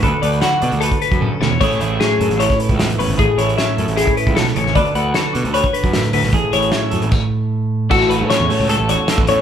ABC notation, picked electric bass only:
X:1
M:4/4
L:1/16
Q:1/4=152
K:A
V:1 name="Picked electric bass" clef=bass
D,, z D,,2 z2 B,, D,,2 z2 F,,2 z D,, E,, | A,,, z A,,,2 z2 F,, A,,,2 z2 C,,2 z A,,, G,,, | A,,, z A,,,2 z2 F,, A,,,2 z2 C,,2 z A,,, G,,, | D,, z D,,2 z2 B,, D,,2 z2 F,,2 z D,, B,,, |
A,,, z A,,,2 z2 F,, A,,, z8 | A,,,3 A,,2 E,, z C,,2 A,,,2 z2 A,,, A,, z |]